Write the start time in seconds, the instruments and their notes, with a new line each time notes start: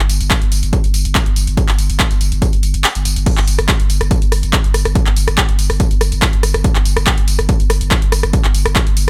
0.09 sub bass G1, open hi-hat, tambourine
0.20 sub bass G1, closed hi-hat, tambourine
0.31 kick, clap, closed hi-hat, tambourine
0.42 sub bass G1, closed hi-hat
0.52 sub bass G1, open hi-hat, tambourine
0.63 sub bass G1, closed hi-hat, tambourine
0.73 kick, closed hi-hat, tambourine
0.84 sub bass G1, closed hi-hat, tambourine
0.94 sub bass G1, open hi-hat, tambourine
1.05 sub bass G1, closed hi-hat, tambourine
1.15 kick, clap, closed hi-hat, tambourine
1.26 sub bass G1, closed hi-hat
1.36 sub bass G1, open hi-hat, tambourine
1.47 sub bass G1, closed hi-hat, tambourine
1.57 kick, closed hi-hat, tambourine
1.68 sub bass G1, clap, closed hi-hat, tambourine
1.78 sub bass G1, open hi-hat, tambourine
1.90 sub bass G1, closed hi-hat, tambourine
2.00 kick, clap, closed hi-hat
2.11 sub bass G1, closed hi-hat, tambourine
2.21 sub bass G1, open hi-hat, tambourine
2.32 sub bass G1, closed hi-hat, tambourine
2.42 kick, closed hi-hat, tambourine
2.53 sub bass G1, closed hi-hat, tambourine
2.63 sub bass G1, open hi-hat, tambourine
2.74 sub bass G1, closed hi-hat, tambourine
2.84 clap, closed hi-hat, tambourine
2.95 sub bass G1, closed hi-hat, tambourine
3.05 sub bass G1, open hi-hat, tambourine
3.16 sub bass G1, closed hi-hat, tambourine
3.26 kick, closed hi-hat, tambourine, crash
3.37 sub bass G1, clap, closed hi-hat
3.48 sub bass G1, open hi-hat, tambourine
3.59 sub bass G1, cross-stick, closed hi-hat, tambourine
3.69 kick, clap, closed hi-hat, tambourine
3.80 sub bass G1, closed hi-hat
3.90 sub bass G1, open hi-hat, tambourine
4.01 sub bass G1, cross-stick, closed hi-hat, tambourine
4.11 kick, closed hi-hat, tambourine
4.22 sub bass G1, closed hi-hat, tambourine
4.32 sub bass G1, cross-stick, open hi-hat, tambourine
4.43 sub bass G1, closed hi-hat, tambourine
4.53 kick, clap, closed hi-hat, tambourine
4.64 sub bass G1, closed hi-hat
4.74 sub bass G1, cross-stick, open hi-hat, tambourine
4.85 sub bass G1, cross-stick, closed hi-hat, tambourine
4.95 kick, closed hi-hat, tambourine
5.06 sub bass G1, clap, closed hi-hat
5.17 sub bass G1, open hi-hat, tambourine
5.28 sub bass G1, cross-stick, closed hi-hat, tambourine
5.38 kick, clap, closed hi-hat, tambourine
5.49 sub bass G1, closed hi-hat
5.59 sub bass G1, open hi-hat, tambourine
5.70 sub bass G1, cross-stick, open hi-hat, tambourine
5.80 kick, closed hi-hat, tambourine
5.91 sub bass G1, closed hi-hat, tambourine
6.01 sub bass G1, cross-stick, open hi-hat, tambourine
6.12 sub bass G1, closed hi-hat, tambourine
6.22 kick, clap, closed hi-hat, tambourine
6.33 sub bass G1, closed hi-hat
6.43 sub bass G1, cross-stick, open hi-hat, tambourine
6.54 sub bass G1, cross-stick, closed hi-hat, tambourine
6.64 kick, closed hi-hat, tambourine
6.75 sub bass G1, clap, closed hi-hat
6.85 sub bass G1, open hi-hat, tambourine
6.97 sub bass G1, cross-stick, closed hi-hat, tambourine
7.07 kick, clap, closed hi-hat, tambourine
7.18 sub bass G1, closed hi-hat
7.28 sub bass G1, open hi-hat, tambourine
7.39 sub bass G1, cross-stick, closed hi-hat, tambourine
7.49 kick, closed hi-hat, tambourine
7.60 sub bass G1, closed hi-hat, tambourine
7.70 sub bass G1, cross-stick, open hi-hat, tambourine
7.81 sub bass G1, closed hi-hat, tambourine
7.91 kick, clap, closed hi-hat, tambourine
8.02 sub bass G1, closed hi-hat
8.12 sub bass G1, cross-stick, open hi-hat, tambourine
8.23 sub bass G1, cross-stick, closed hi-hat, tambourine
8.33 kick, closed hi-hat, tambourine
8.44 sub bass G1, clap, closed hi-hat
8.55 sub bass G1, open hi-hat, tambourine
8.66 sub bass G1, cross-stick, closed hi-hat, tambourine
8.76 kick, clap, closed hi-hat, tambourine
8.87 sub bass G1, closed hi-hat
8.97 sub bass G1, open hi-hat, tambourine